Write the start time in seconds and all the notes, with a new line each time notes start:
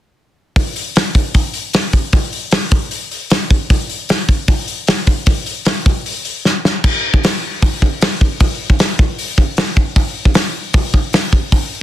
0.56 kick, open hi-hat
0.76 open hi-hat
0.96 snare, open hi-hat
1.15 kick, open hi-hat
1.34 kick, open hi-hat
1.54 open hi-hat
1.73 snare, open hi-hat
1.93 kick, open hi-hat
2.13 kick, open hi-hat
2.33 open hi-hat
2.51 snare, open hi-hat
2.71 kick, open hi-hat
2.91 open hi-hat
3.11 open hi-hat
3.30 snare, open hi-hat
3.50 kick, open hi-hat
3.70 kick, open hi-hat
3.90 open hi-hat
4.09 snare, open hi-hat
4.28 kick, open hi-hat
4.48 kick, open hi-hat
4.68 open hi-hat
4.87 snare, open hi-hat
5.07 kick, open hi-hat
5.26 kick, open hi-hat
5.46 open hi-hat
5.65 snare, open hi-hat
5.86 kick, open hi-hat
6.06 open hi-hat
6.25 open hi-hat
6.45 snare
6.65 snare
6.84 kick, crash
7.14 kick
7.23 snare, open hi-hat
7.62 kick, open hi-hat
7.82 kick
8.01 snare, open hi-hat
8.21 kick
8.40 kick, open hi-hat
8.70 kick
8.79 snare, open hi-hat
8.99 kick
9.18 open hi-hat
9.38 kick
9.57 snare, open hi-hat
9.77 kick
9.96 kick, open hi-hat
10.25 kick
10.34 snare, open hi-hat
10.73 kick, open hi-hat
10.94 kick
11.13 snare, open hi-hat
11.33 kick
11.52 kick, open hi-hat